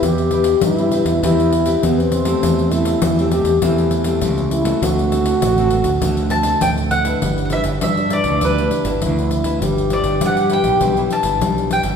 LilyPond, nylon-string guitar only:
\new Staff \with { instrumentName = "Nylon-string guitar" } { \time 4/4 \key g \major \tempo 4 = 100 << { <c' g' b'>8 <c' g' b'>8 r16 <c' g' b'>16 <c' g' b'>16 r16 <c' g' b'>8 r16 <c' g' b'>4 <a c' g'>16~ | <a c' g'>8 <a c' g'>8 r16 <a c' g'>16 <a c' g'>16 r16 <a c' g'>8. <a c' g'>4 <a c' fis'>16~ | <a c' fis'>8 <a c' fis'>8. <a c' fis'>16 <a c' fis'>16 r16 <a c' fis'>8. <a c'>4 <d' e' b'>16~ | <d' e' b'>8 <d' e' b'>8. r16 <d' e' b'>8 <d' e' b'>16 <d' e' b'>8 <d' e' b'>4 <d' e' b'>16~ |
<d' e' b'>8 <d' e' b'>4 <d' e' b'>8 <d' e' b'>16 <d' e' b'>8 <d' e' b'>4 <g cis' e'>16 | } \\ { e4 e4 e4 e4 | e4 r4 e4 e4 | d4 a,4 d4 a,4 | g4 d4 g4 d4 |
g4 g4 g4 g4 | } >> }